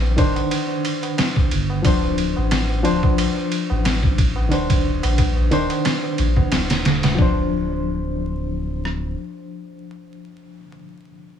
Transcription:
Already playing: analog synth bass A#1, reed electric piano D#3 D4 C5
0.02 tabla na
0.16 analog synth bass D#1, reed electric piano D#3 D4 C5, kick, ride
0.35 ride, tabla na
0.51 ride, tabla na
0.68 tabla na
0.85 ride
1.03 ride, tabla na
1.18 snare, ride, tabla na
1.36 kick, tabla na
1.51 analog synth bass G1, ride
1.70 tabla na
1.82 analog synth bass D1, reed electric piano F3 D4, kick, ride, tabla na
1.86 reed electric piano C5
2.03 tabla na
2.18 ride
2.36 analog synth bass A1, tabla na
2.51 snare, ride, tabla na
2.69 tabla na
2.83 analog synth bass D1, reed electric piano F3 D4 C5, ride
3.03 kick, tabla na
3.18 ride, tabla na
3.36 tabla na
3.52 ride
3.70 analog synth bass A1, tabla na
3.84 snare, ride, tabla na
4.03 kick, tabla na
4.18 kick, ride
4.36 tabla na
4.49 analog synth bass D#1, reed electric piano D#3 D4, ride, tabla na
4.53 reed electric piano C5
4.70 kick, ride, tabla na
5.03 analog synth bass A#1, ride, tabla na
5.18 kick, ride, tabla na
5.36 tabla na
5.51 analog synth bass D#1, reed electric piano D#3 D4 C5, ride
5.70 ride, tabla na
5.85 snare, ride, tabla na
6.03 tabla na
6.18 analog synth bass A#1, ride
6.36 kick, tabla na
6.52 analog synth bass D#1, snare, ride, tabla na
6.69 snare, ride, tabla na
6.85 snare, ride
7.03 analog synth bass D#1, snare, ride, tabla na
7.15 analog synth bass D1, reed electric piano F3 D4, kick
7.22 reed electric piano C5
8.85 cross-stick

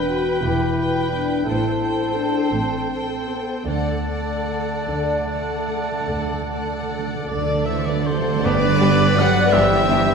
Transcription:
Already playing: double bass section E1, cello section E2, harp E3 B3, viola section B4, violin section B4 G5, clarinet B4, oboe G5, flute B5
0.08 french horn section F#4, harp B4
0.42 double bass section E1, cello section E2, french horn section E4, harp G4
0.76 viola section B4, violin section B4 G5, harp B4
1.10 harp B3, french horn section D4
1.45 double bass section A1, harp A2, cello section A2, french horn section E4, viola section A4, clarinet C5, violin section C5 G5, flute A5
1.81 harp C4, viola section A4, violin section C5 G5
2.15 french horn section D4, harp A4
2.50 double bass section A1, cello section A2, french horn section C4, harp C5
2.89 harp A4, viola section A4, violin section C5 G5
3.27 french horn section B3, harp C4
3.65 double bass section D2, cello section D3, harp D3, timpani D3, french horn section A3, viola section A4, clarinet D5, violin section D5 F#5, oboe F#5, flute A5
4.06 timpani D3, harp D4, viola section A4, violin section D5 F#5
4.35 timpani D3
4.44 timpani D3
4.48 timpani D3, harp A4
4.59 timpani D3
4.69 timpani D3
4.77 timpani D3
4.86 double bass section D2, timpani D3, cello section D3, harp D5
5.02 timpani D3
5.10 timpani D3
5.19 timpani D3
5.27 timpani D3, viola section A4, harp A4, violin section D5 F#5
5.35 timpani D3
5.44 timpani D3
5.52 timpani D3
5.59 timpani D3
5.68 timpani D3, harp D4
5.76 timpani D3
5.84 timpani D3
5.92 timpani D3
6.00 timpani D3
6.08 double bass section D2, timpani D3, cello section D3, harp A3
6.17 timpani D3
6.25 timpani D3
6.33 timpani D3
6.41 timpani D3
6.49 timpani D3, harp D4, viola section A4, violin section D5 F#5
6.58 timpani D3
6.65 timpani D3
6.75 timpani D3
6.83 timpani D3
6.89 timpani D3, harp A4
6.99 timpani D3
7.08 timpani D3
7.16 timpani D3
7.23 timpani D3, oboe D5
7.27 double bass section D2, cello section D3, flute A4, violin section D5, harp D5
7.31 timpani D3
7.38 timpani D3
7.46 timpani D3
7.54 timpani D3
7.62 timpani D3, flute C5, violin section E5 F#5, oboe E5
7.67 cello section E3, harp A4, viola section A4, violin section D5
7.71 timpani D3
7.79 timpani D3
7.84 timpani D3, cello section D3, flute B4, violin section D5, oboe D5
7.96 timpani D3
8.03 timpani D3, harp D4, flute A4, violin section C5, oboe C5
8.07 cello section C3
8.12 timpani D3
8.20 timpani D3
8.29 timpani D3
8.36 timpani D3
8.42 double bass section G1, harp G2, timpani G2, cello section D3, trombone section G3, viola section G3 B3, french horn section B3 G4, violin section D4 G4 D5, clarinet B4, flute B4, oboe D5
8.46 trombone section G2
8.63 harp D3
8.81 viola section G3 B3, harp D4, violin section D4 G4
9.00 harp G4
9.15 cello section F#3, viola section G3 B3, violin section D4 G4 F#5, harp B4, flute D5, oboe F#5
9.35 harp D5
9.51 double bass section G1, cello section E3, viola section G3 B3, violin section D4 G4 E5, clarinet G4, flute C5, oboe E5, harp G5
9.72 harp B5
9.87 viola section G3 B3, violin section D4 G4, harp G5
10.08 harp B5

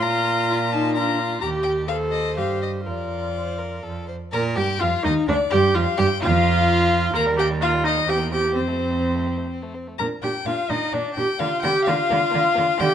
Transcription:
Already playing: viola F4
0.03 cello A#2, violin F4 A#5
0.50 violin F4
0.72 violin D#4 A5
0.95 violin D4 A#5, viola F4
1.19 violin F4
1.41 cello D#2, viola G4, violin G4 A#5
1.63 violin G5
1.88 viola A4, violin C5 F5
2.11 violin D#5
2.37 cello G2, viola G4, violin F5
2.62 violin D#5
2.85 cello F2, viola F4, violin A#4 D5
3.34 violin C5
3.58 violin A#4
3.83 cello F2, violin A4
4.07 violin C5
4.32 cello A#2, violin A#4 A#5, viola A#4
4.56 cello G2, violin G4 G5, viola G4
4.80 cello F2, viola F4, violin F4 F5
5.03 cello D#2, violin D#4 D#5, viola D#4
5.27 cello D2, violin D4 D5, viola D4
5.50 cello G2, viola G4, violin G4 G5
5.75 cello F2, violin F4 F5, viola F4
5.98 cello G2, violin G4 G5, viola G4
6.20 cello F2, viola F4, violin F4 F5
7.13 cello D#2, violin A#3 A#5, viola A#4
7.26 violin G3
7.37 violin A#3 G5, viola G4
7.50 violin G3
7.61 violin A#3 F5, viola F4
7.74 violin G3
7.84 violin A#3 D#5, viola D#4
7.97 violin G3
8.06 cello E2, violin C4 G5, viola G4
8.18 violin A#3
8.31 violin C4 G5, viola G4
8.44 violin A#3
8.55 cello F2, viola C4, violin C4 C5
8.67 violin A3
8.79 violin C4
8.90 violin A3
9.02 violin C4
9.15 violin A3
9.27 violin C4
9.37 violin A3
9.50 violin C4
9.62 violin A3
9.74 violin C4
9.87 violin A3
9.98 cello A#2, violin D4 A#5, viola A#4
10.22 cello A#2, violin D4 G5, viola G4
10.45 cello A#2, violin D4 F5, viola F4
10.69 cello A#2, violin D4 D#5, viola D#4
10.92 cello A#2, violin D4 D5, viola D4
11.14 cello A#2, violin D4 G5
11.18 viola G4
11.39 cello D3, violin A#3 F5, viola F4
11.62 cello D3, violin A#3 G5, viola G4
11.85 cello D3, violin A#3 F5, viola F4
12.09 cello D3, violin A#3
12.31 cello D3, violin A#3
12.54 cello D3, violin A#3
12.78 cello D3, violin A3 G5, viola G4

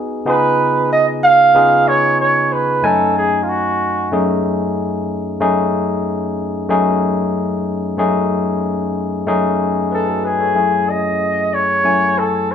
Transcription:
Already playing: tine electric piano B3 D#4 F#4 G#4
0.25 tine electric piano C#3 B3 D#4 F4 G#4, flugelhorn B4
0.92 flugelhorn D#5
1.23 flugelhorn F5
1.54 tine electric piano C#3 B3 D#4 F4 G#4
1.88 flugelhorn C#5
2.20 flugelhorn C#5
2.53 flugelhorn B4
2.82 tine electric piano F#2 A3 C#4 D#4 G#5, flugelhorn A4
3.17 flugelhorn G#4
3.43 flugelhorn F4
3.49 flugelhorn F#4
4.12 tine electric piano F#2 A3 C#4 D#4 G#4
5.40 tine electric piano F#2 A3 C#4 D#4 G#4
6.69 tine electric piano F#2 A3 C#4 D#4 G#4
7.97 tine electric piano F#2 A3 C#4 D#4 G#4
9.26 tine electric piano F#2 A3 C#4 D#4 G#4
9.92 tine electric piano G#4 B4, flugelhorn A4
10.08 tine electric piano F#4 A4
10.24 tine electric piano G#4 B4, flugelhorn G#4
10.40 tine electric piano A4 C#5
10.55 tine electric piano F#2 A3 C#4 E4 G#4
10.90 flugelhorn D#5
11.54 flugelhorn C#5
11.84 tine electric piano F#2 A3 C#4 E4 G#5
12.18 flugelhorn A4
12.51 flugelhorn C#5

